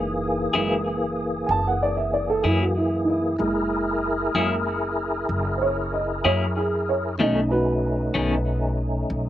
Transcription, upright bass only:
Already playing: F#1
0.53 F#1
1.49 F#1
2.44 F#2
3.39 F#1
4.35 F#1
5.29 F#1
6.25 F#2
7.20 B1
8.15 B1
9.10 B1

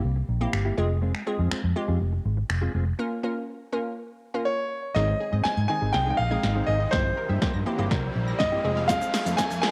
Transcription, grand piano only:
4.45 C#5
4.94 D#5
5.44 G#5
5.68 G#5
5.93 G5
6.10 G5
6.17 F5
6.67 D#5
6.91 C5
8.39 D#5
8.88 F5
9.37 G#5
9.62 G#5

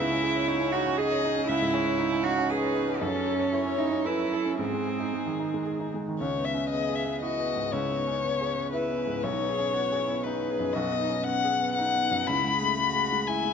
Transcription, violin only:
Already playing: E5
0.48 C#5
0.98 D#5
1.49 E5
1.74 C#5
2.50 B4
3.02 A4
3.53 C#5
4.06 B4
4.33 A4
4.59 G#4
6.19 C#5
6.45 E5
6.70 D#5
6.95 E5
7.22 D#5
7.72 C#5
8.73 B4
9.23 C#5
10.24 B4
10.74 D#5
11.24 F#5
11.75 F#5
12.27 B5
13.27 G#5

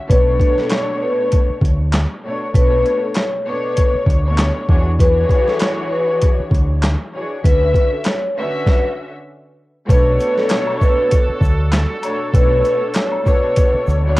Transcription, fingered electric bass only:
0.10 B1
1.50 muted fingered electric bass stroke
1.62 D2
2.55 B1
3.95 muted fingered electric bass stroke
4.07 D2
4.69 E2
6.40 muted fingered electric bass stroke
6.52 D2
7.45 D2
9.90 B1
11.29 muted fingered electric bass stroke
11.41 D2
12.34 B1
13.74 muted fingered electric bass stroke
13.88 D2

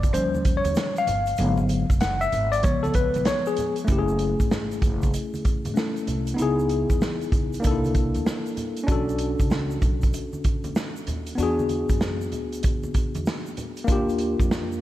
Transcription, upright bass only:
Already playing: F#1
0.13 D#2
0.64 D#2
1.07 G1
1.38 G#1
1.90 F#1
2.33 G#1
2.65 C#2
3.16 B1
3.88 F#1
4.40 G#1
4.83 F#1
5.65 A1
6.07 C2
6.38 C#2
6.90 E2
7.32 C#2
7.65 C2
8.15 D2
8.88 B1
9.40 C#2
9.83 B1
10.65 D2
11.07 D#2
11.38 E2
11.90 F#2
12.33 D2
13.15 E2
13.88 D#2
14.40 F2

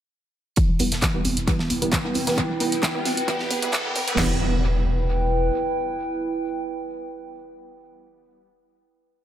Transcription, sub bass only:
0.69 E1
0.80 E1
0.92 E1
1.14 E1
1.25 E1
1.37 E1
1.59 E1
1.70 E1
1.82 E1
2.05 E1
2.15 E1
2.27 E1
2.50 E1
2.60 E1
2.72 E1
2.95 E1
3.05 E1
3.17 E1
3.40 E1
3.51 E1
3.62 E1
3.85 E1
3.96 E1
4.08 E1
4.18 E1

